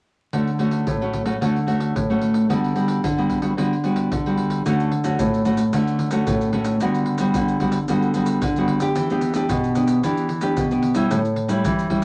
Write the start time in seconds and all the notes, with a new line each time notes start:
0.33 D3 A3 C#4 F#4, pandeiro, surdo
0.47 pandeiro
0.59 A3 C#4 F#4, pandeiro
0.71 pandeiro
0.87 A2, pandeiro, surdo
1.01 A3 C#4 F#4, pandeiro
1.13 pandeiro, surdo
1.25 A3 C#4 F#4, pandeiro
1.41 D3 A3 C#4 F#4, pandeiro, surdo
1.56 pandeiro
1.67 A3 C#4 F#4, pandeiro
1.80 pandeiro
1.95 A2, pandeiro, surdo
2.10 A3 C#4 F#4, pandeiro
2.22 pandeiro
2.34 pandeiro
2.49 D3 G3 B3 F#4, pandeiro, surdo
2.64 pandeiro
2.76 G3 B3 F#4, pandeiro
2.88 pandeiro
3.04 D3, pandeiro, surdo
3.17 G3 B3 F#4, pandeiro
3.30 pandeiro, surdo
3.42 G3 B3 F#4, pandeiro
3.57 D3 G3 B3 F#4, pandeiro, surdo
3.73 pandeiro
3.84 G3 B3 F#4, pandeiro
3.96 pandeiro
4.12 D3, pandeiro, surdo
4.26 G3 B3 F#4, pandeiro
4.37 pandeiro
4.50 pandeiro
4.66 D3 A3 C#4 F#4, pandeiro, maracas, surdo
4.80 pandeiro, maracas
4.92 pandeiro
5.04 A3 C#4 F#4, pandeiro, maracas
5.19 A2, pandeiro, maracas, surdo
5.34 pandeiro, maracas
5.45 A3 C#4 F#4, pandeiro, maracas, surdo
5.57 pandeiro, maracas
5.73 D3 A3 C#4 F#4, pandeiro, maracas, surdo
5.87 pandeiro, maracas
5.99 pandeiro
6.11 A3 C#4 F#4, pandeiro, maracas
6.27 A2, pandeiro, maracas, surdo
6.41 pandeiro, maracas
6.53 A3 C#4 F#4, pandeiro
6.65 pandeiro, maracas
6.80 D3 G3 B3 F#4, pandeiro, maracas, surdo
6.94 pandeiro, maracas
7.06 pandeiro
7.18 G3 B3 F#4, pandeiro, maracas
7.34 D3, pandeiro, maracas, surdo
7.48 pandeiro, maracas
7.60 G3 B3 F#4, pandeiro, surdo
7.72 pandeiro, maracas
7.88 D3 G3 B3 F#4, pandeiro, maracas, surdo
8.02 pandeiro, maracas
8.14 G3 B3 F#4, pandeiro, maracas
8.26 pandeiro, maracas
8.42 D3, pandeiro, maracas, surdo
8.56 G3 B3 F#4, pandeiro, maracas
8.68 pandeiro
8.80 B3 D4 G4, pandeiro, maracas
8.95 E3, pandeiro, maracas, surdo
9.10 B3 D4 G4, pandeiro, maracas
9.21 pandeiro, maracas
9.34 B3 D4 G4, pandeiro, maracas
9.49 B2, pandeiro, maracas, surdo
9.64 pandeiro, maracas
9.75 B3 D4 G4, pandeiro, maracas
9.88 pandeiro, maracas
10.03 E3 B3 D4 G4, pandeiro, maracas, surdo
10.17 pandeiro, maracas
10.29 pandeiro
10.41 B3 D4 G4, pandeiro, maracas
10.57 B2, pandeiro, maracas, surdo
10.71 B3 D4 G4, pandeiro, maracas
10.82 pandeiro
10.95 G3 C#4 E4, pandeiro, maracas
11.10 A2, pandeiro, maracas, surdo
11.25 pandeiro, maracas
11.36 pandeiro
11.48 G3 C#4 E4, pandeiro, maracas
11.64 E3, pandeiro, maracas, surdo
11.79 pandeiro, maracas
11.90 G3 C#4 E4, pandeiro, surdo